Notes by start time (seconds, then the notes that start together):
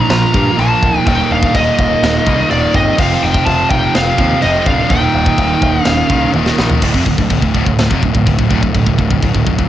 Already playing: A#2 F3 A#3 C6
0.10 A#1 F4 A#5, snare, china
0.33 G2 A#2 F3 A#3, kick
0.58 A#1 A#2 F3 A#3 F4 A5, china
0.82 D1, kick
1.05 D#1 D#2 A#2 D#3 D#4 G5, kick, china
1.31 D#1 D4 F5
1.43 kick
1.55 D#1 A#3 D#5, kick, china
1.79 D#1, kick
2.03 D#1, snare, china
2.26 C2 D#2 A#2 D#3, kick
2.50 D#1 D#2 A#2 D#3 A#3 D5, china
2.74 G1 C4 D#5, kick
2.98 F1 F2 C3 F3 C4 F5, kick, china, crash
3.23 F1 D#4 G5
3.34 kick
3.46 F1 F4 A5, kick, china
3.70 F1 D#4 G5, kick
3.95 F1 C4 F5, snare, china
4.17 D#2 F2 C3 F3, kick
4.41 F1 F2 C3 F3 C4 D#5, china
4.66 D1 D4 F5, kick
4.89 D#1 D#2 A#2 D#3 D#4 G5, kick, china
5.14 D#1
5.26 kick
5.38 D#1, kick, china
5.62 D#1, kick
5.84 D#1 C#4 F5, snare, china
6.09 C2 D#2 A#2 D#3, kick
6.33 D#1 D#2 A#2 D#3, high tom
6.46 snare
6.59 A#1, snare
6.70 floor tom
6.82 D1 D2 A2, kick, crash, china
6.93 F1 F2 C3, kick
7.05 D1 D2 A2, kick
7.18 D1 D2 A2, kick
7.30 D1 D2 A2, kick, china
7.42 D1 D2 A2, kick
7.54 D1 D2 A2, kick
7.66 D1 D2 A2, kick
7.78 D1 D2 A2, snare, china
7.90 F1 F2 C3, kick
8.03 D1 D2 A2, kick
8.13 D1 D2 A2, kick
8.26 D1 D2 A2, kick, china
8.38 D1 D2 A2, kick
8.50 D1 D2 A2, kick
8.62 D1 D2 A2, kick
8.74 D1 D2 A2, kick, china
8.86 D1 D2 A2, kick
8.98 D1 D2 A2, kick
9.10 D1 D2 A2, kick
9.22 D1 D2 A2, kick, china
9.34 D1 D2 A2, kick
9.47 D1 D2 A2, kick
9.59 D1 D2 A2, kick